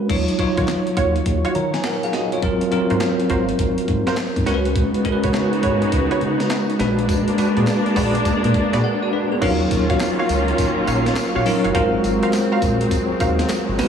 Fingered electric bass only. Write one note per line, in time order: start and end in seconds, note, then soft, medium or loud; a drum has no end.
0.10 0.24 D#2 loud
0.39 muted fingered electric bass stroke soft
0.58 0.65 D#3 loud
0.97 1.18 D#2 medium
1.26 1.40 D#2 medium
1.55 1.69 D#3 loud
2.43 2.57 G#1 loud
2.72 muted fingered electric bass stroke medium
2.91 2.98 G#2 medium
3.30 3.51 G#1 medium
3.59 3.73 G#1 medium
3.88 4.02 G#2 loud
4.36 4.44 G#2 loud
4.47 4.82 C#2 loud
5.05 muted fingered electric bass stroke soft
5.24 5.31 C#3 loud
5.63 5.85 G#2 medium
5.92 6.06 C#2 loud
6.21 6.35 C#3 loud
6.80 7.23 A#1 medium
7.38 muted fingered electric bass stroke medium
7.57 7.64 A#2 loud
7.96 8.18 A#1 medium
8.44 8.52 A#2 medium
8.73 8.81 A#2 loud
9.42 9.63 D#2 loud
9.71 9.85 D#2 loud
10.29 10.51 C#2 medium
10.77 muted fingered electric bass stroke medium
10.87 11.09 A#1 loud
11.17 muted fingered electric bass stroke medium
11.36 11.43 A#1 medium
11.65 11.72 F#1 medium
11.75 11.96 G#1 loud
12.04 12.18 G#1 loud
12.62 12.84 A#1 medium
13.10 muted fingered electric bass stroke soft
13.20 13.42 D#2 medium
13.50 muted fingered electric bass stroke soft
13.68 13.80 G#1 loud
13.79 13.88 C#2 loud